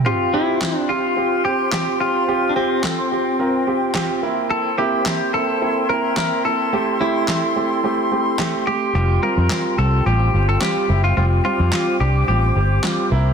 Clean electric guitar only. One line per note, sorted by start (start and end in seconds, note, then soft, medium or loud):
0.06 0.35 F4 medium
0.34 0.79 E4 medium
0.79 0.91 D4 medium
0.89 1.44 F4 loud
1.45 1.71 G4 loud
1.73 1.98 G4 loud
2.00 2.51 F4 loud
2.49 2.56 D4 medium
2.56 4.19 C4 medium
4.50 4.78 A4 loud
4.78 5.33 G4 loud
5.34 5.89 A4 loud
5.89 6.15 A#4 loud
6.17 6.45 A#4 loud
6.45 7.02 A4 loud
7.01 8.63 E4 medium
8.67 8.94 G4 medium
8.95 9.22 G4 medium
9.23 9.78 A#4 loud
9.78 10.06 A4 medium
10.06 10.48 G4 medium
10.49 10.61 A4 medium
10.62 11.01 G4 medium
11.04 11.16 F4 medium
11.17 11.25 F4 medium
11.45 11.96 F4 medium
12.00 12.27 G4 medium
12.28 13.07 G4 medium